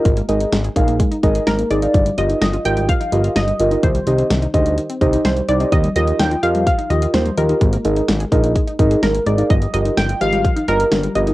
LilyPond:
<<
  \new Staff \with { instrumentName = "Analog polysynth" } { \time 4/4 \key ees \major \tempo 4 = 127 bes'8 r2 r8 bes'8 d''8~ | d''8 ees''8 ees''8 g''8 f''4 ees''4 | c''4. r4. c''8 d''8 | ees''8 ees''8 g''8 f''8 f''8 ees''8 c''8 bes'8~ |
bes'8 r2 r8 bes'8 d''8 | ees''8 ees''8 g''8 f''4 bes'4 ees''8 | }
  \new Staff \with { instrumentName = "Synth keys" } { \time 4/4 \key ees \major r8 <ees' aes' bes' ees''>8 r8 <ees' aes' bes' f''>8 r8 <ees' aes' bes' ees''>8 r8 <ees' aes' bes' ees''>16 <ees' aes' bes' f''>16 | r8 <f' g' bes' ees''>8 r8 <f' g' bes' ees''>8 r8 <f' g' bes' ees''>8 r8 <f' g' bes' ees''>16 <f' g' bes' ees''>16 | r8 <ees' g' c'' ees''>8 r8 <ees' g' c'' ees''>8 r8 <ees' g' c'' ees''>8 r8 <ees' g' c'' d''>16 <ees' g' c'' ees''>16 | r8 <f' g' bes' ees''>8 r8 <f' g' bes' ees''>8 r8 <f' g' bes' ees''>8 r8 <f' g' bes' ees''>16 <f' g' bes' ees''>16 |
r8 <ees' aes' bes' ees''>8 r8 <ees' aes' bes' ees''>8 r8 <ees' aes' bes' ees''>8 r8 <ees' aes' bes' ees''>16 <ees' aes' bes' f''>16 | r8 <f' g' bes' ees''>8 r8 <f' g' bes' ees''>8 r8 <f' g' bes' ees''>8 r8 <f' g' bes' ees''>16 <f' g' bes' ees''>16 | }
  \new Staff \with { instrumentName = "Synth arpeggio sound" } { \clef bass \time 4/4 \key ees \major aes16 bes16 aes16 ees'16 aes16 aes'16 aes16 bes16 aes16 ees'16 aes16 aes'16 aes16 bes16 aes16 ees'16 | f16 g16 f16 ees'16 f16 f'16 f16 g16 f16 ees'16 f16 f'16 f16 g16 f16 ees'16 | ees16 g16 ees16 c'16 ees16 ees'16 ees16 g16 ees16 c'16 ees16 ees'16 ees16 g16 ees16 c'16 | f16 g16 f16 ees'16 f16 f'16 f16 g16 f16 ees'16 f16 f'16 f16 g16 f16 ees'16 |
aes16 bes16 aes16 ees'16 aes16 aes'16 aes16 bes16 aes16 ees'16 aes16 aes'16 aes16 bes16 aes16 ees'16 | f16 g16 f16 ees'16 f16 f'16 f16 g16 f16 ees'16 f16 f'16 f16 g16 f16 ees'16 | }
  \new Staff \with { instrumentName = "Analog synth bass" } { \clef bass \time 4/4 \key ees \major aes,,8 aes,,8 aes,,8 bes,,8. r16 aes,,8 aes,,8 aes,,8 | g,,8 g,,8 g,,8 aes,,8. r16 g,,8 g,,8 g,,8 | c,8 c,8 c,8 d,8. r16 c,8 c,8 c,8 | ees,8 ees,8 ees,8 f,8. r16 ees,8 ees,8 ees,8 |
aes,,8 aes,,8 aes,,8 bes,,8. r16 aes,,8 aes,,8 aes,,8 | g,,8 g,,8 g,,8 aes,,8. r16 g,,8 g,,8 g,,8 | }
  \new DrumStaff \with { instrumentName = "Drums" } \drummode { \time 4/4 <hh bd>16 hh16 hh16 hh16 <hh sn>16 hh16 <hh bd>16 hh16 <hh bd>16 hh16 <hh bd>16 hh16 <hh sn>16 hh16 hh16 hh16 | <hh bd>16 hh16 hh16 hh16 <hh sn>16 hh16 hh16 hh16 <hh bd>16 hh16 hh16 hh16 <hh sn>16 hh16 hh16 hh16 | <hh bd>16 hh16 hh16 hh16 <hh sn>16 hh16 <hh bd>16 hh16 hh16 hh16 <hh bd>16 hh16 <hh sn>16 hh16 hh16 hh16 | <hh bd>16 hh16 hh16 hh16 <hh sn>16 hh16 hh16 hh16 <hh bd>16 hh16 hh16 hh16 <hh sn>16 hh16 hh16 hh16 |
<hh bd>16 hh16 hh16 hh16 <hh sn>16 hh16 <hh bd>16 hh16 <hh bd>16 hh16 <hh bd>16 hh16 <hh sn>16 hh16 hh16 hh16 | <hh bd>16 hh16 hh16 hh16 <hh sn>16 hh16 hh16 hh16 <hh bd>16 hh16 hh16 hh16 <hh sn>16 hh16 hh16 hh16 | }
>>